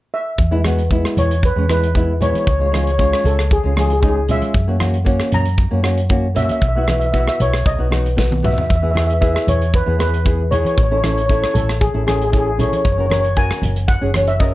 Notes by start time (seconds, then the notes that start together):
0.14 E5
0.38 E2, kick, closed hi-hat
0.51 G#3 B3 E4
0.64 G#3 B3 F#4, cross-stick, closed hi-hat, high conga
0.79 closed hi-hat
0.91 G#3 B3 E4, kick, closed hi-hat
1.05 cross-stick
1.17 E2 C#5, closed hi-hat, high conga, low conga
1.31 closed hi-hat
1.43 B4, kick, closed hi-hat
1.56 E2 G#3 B3 C#4
1.69 G#3 B3 E4 B4, cross-stick, closed hi-hat, high conga
1.83 closed hi-hat
1.95 G#3 B3 E4, kick, closed hi-hat
2.20 G#3 B3 E4 C#5, closed hi-hat, low conga
2.30 C#5
2.34 closed hi-hat, high conga
2.39 C#5
2.45 C#2 C#5, kick, closed hi-hat
2.51 C#5
2.59 G#3 C#4 F4 C#5
2.67 C#5
2.72 G#3 C#4 F4 C#5, cross-stick, closed hi-hat, high conga
2.84 C#5, closed hi-hat
2.92 C#5
2.98 G#3 C#4 F4 C#5, kick, closed hi-hat
3.05 C#5
3.13 C#5, cross-stick
3.24 C#2 A4, closed hi-hat, high conga, low conga
3.39 cross-stick, closed hi-hat
3.51 G#4, kick, closed hi-hat
3.63 C#2 G#3 C#4 F4
3.76 G#3 C#4 F4 G#4, cross-stick, closed hi-hat, high conga
3.86 G#4
3.90 G#4, closed hi-hat
4.00 G#3 C#4 D#4 G#4, kick, closed hi-hat
4.09 G#4
4.16 G#4
4.28 G#3 C#4 F4 E5, closed hi-hat, low conga
4.42 closed hi-hat, high conga
4.54 F#2, kick, closed hi-hat
4.67 A#3 C#4 F#4
4.79 A#3 C#4 F#4, cross-stick, closed hi-hat, high conga
4.94 closed hi-hat
5.04 A#3 C#4 F#4, kick, closed hi-hat
5.20 cross-stick
5.32 F#2 A#5, closed hi-hat, high conga, low conga
5.45 closed hi-hat
5.58 kick, closed hi-hat
5.71 F#2 A#3 C#4 F#4
5.83 A#3 C#4 F#4, cross-stick, closed hi-hat
5.98 closed hi-hat
6.09 A#3 C#4 F#4, kick, closed hi-hat
6.35 A#3 C#4 F#4 E5, closed hi-hat, low conga
6.45 E5
6.49 E5, closed hi-hat, high conga
6.61 B1 E5, kick, closed hi-hat
6.69 E5
6.76 B3 E4 F#4 E5
6.84 B3 E5
6.88 E4 F#4 E5, cross-stick, closed hi-hat, high conga
7.00 E5, closed hi-hat
7.06 E5
7.12 B3 E4 F#4 E5, kick, closed hi-hat
7.20 E5
7.28 E5, cross-stick
7.40 B1 C#5, closed hi-hat, high conga, low conga
7.54 cross-stick, closed hi-hat
7.66 B1 D#5, kick, closed hi-hat
7.78 B1 B3 D#4 F#4
7.90 B3 D#4 F#4, cross-stick, closed hi-hat, high conga
8.06 closed hi-hat
8.16 B3 D#4 F#4, kick, snare
8.31 high tom, high conga
8.43 B3 D#4 F#4 E5, mid tom, low conga
8.53 E5
8.58 E5, floor tom
8.69 E2 E5, kick, closed hi-hat
8.76 E5
8.82 B3 E4 G#4 E5
8.91 B3 E4 E5
8.95 G#4 E5, cross-stick, closed hi-hat, high conga
9.07 E5, closed hi-hat
9.14 E5
9.20 B3 E4 G#4 E5, kick, closed hi-hat
9.28 E5
9.34 E5, cross-stick
9.47 E2 C#5, closed hi-hat, high conga, low conga
9.62 closed hi-hat
9.74 B4, kick, closed hi-hat
9.86 E2 B3 E4 G#4
9.98 B3 E4 G#4 B4, cross-stick, closed hi-hat, high conga
10.14 closed hi-hat
10.24 B3 E4 G#4, kick, closed hi-hat
10.51 B3 E4 G#4 C#5, closed hi-hat, low conga
10.59 C#5
10.65 C#5, closed hi-hat, high conga
10.75 A1 C#5, kick, closed hi-hat
10.83 C#5
10.91 C#4 E4 A4 C#5
10.98 C#5
11.03 C#4 E4 A4 C#5, cross-stick, closed hi-hat, high conga
11.13 C#5
11.18 C#5, closed hi-hat
11.26 C#4 C#5, kick
11.30 E4 A4 C#5, closed hi-hat
11.43 C#5, cross-stick
11.54 A1 A4, closed hi-hat, high conga, low conga
11.69 cross-stick, closed hi-hat
11.81 G#4, kick, closed hi-hat
11.94 A1 C#4 E4 A4
12.06 C#4 E4 G#4 A4, cross-stick, closed hi-hat, high conga
12.16 G#4
12.22 G#4, closed hi-hat
12.31 C#4 E4 G#4 A4, kick, closed hi-hat
12.38 G#4
12.47 G#4
12.58 C#4 E4 A4 C#5, closed hi-hat, low conga
12.68 C#5
12.73 C#5, closed hi-hat, high conga
12.83 F#1 C#5, kick, closed hi-hat
12.92 C#5
12.98 C#4 F#4 A#4 C#5
13.06 C#4 C#5
13.10 F#4 A#4 C#5, cross-stick, closed hi-hat, high conga
13.20 C#5
13.25 closed hi-hat
13.36 C#4 F#4 A#4 G#5, kick, closed hi-hat
13.51 cross-stick
13.62 F#1, closed hi-hat, high conga, low conga
13.76 closed hi-hat
13.88 F#5, kick, closed hi-hat
14.01 F#1 C#4 F#4 G#4
14.14 C#4 F#4 C#5, cross-stick, closed hi-hat, high conga
14.27 E5, closed hi-hat
14.40 C#4 F#4 A#4 D#5, kick, closed hi-hat